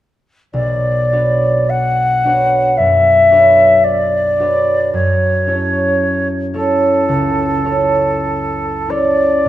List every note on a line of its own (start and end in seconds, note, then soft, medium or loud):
0.53 4.43 B1 soft
0.53 1.71 D5 soft
1.12 2.24 D4 soft
1.12 2.24 F#4 soft
1.12 2.25 B4 soft
1.12 2.25 C#5 soft
1.69 2.79 F#5 soft
2.25 3.30 D4 soft
2.25 3.30 F#4 soft
2.25 3.30 B4 soft
2.25 3.31 C#5 soft
2.77 4.92 F#2 soft
2.77 3.85 E5 soft
3.31 4.38 D4 soft
3.31 4.39 F#4 soft
3.31 4.39 B4 soft
3.31 4.40 C#5 soft
3.84 4.93 D5 soft
4.39 4.98 D4 soft
4.39 8.30 F#4 soft
4.39 4.98 B4 soft
4.39 5.47 C#5 soft
4.93 8.83 F#2 soft
4.93 6.28 C#5 medium
5.47 6.52 C#4 soft
5.47 6.53 E4 soft
5.47 6.53 A4 soft
5.47 6.54 C#5 soft
6.54 7.64 C#4 soft
6.54 7.64 E4 soft
6.54 7.64 A4 soft
6.54 8.92 A4 medium
6.54 7.65 C#5 soft
7.09 9.49 C#2 soft
7.65 8.88 C#4 soft
7.65 8.88 E4 soft
7.65 8.89 A4 soft
7.65 8.89 C#5 soft
8.88 9.49 C#4 soft
8.88 9.49 E4 soft
8.88 9.49 A4 soft
8.88 9.49 C#5 soft
8.88 9.49 D5 medium
9.45 9.49 A2 soft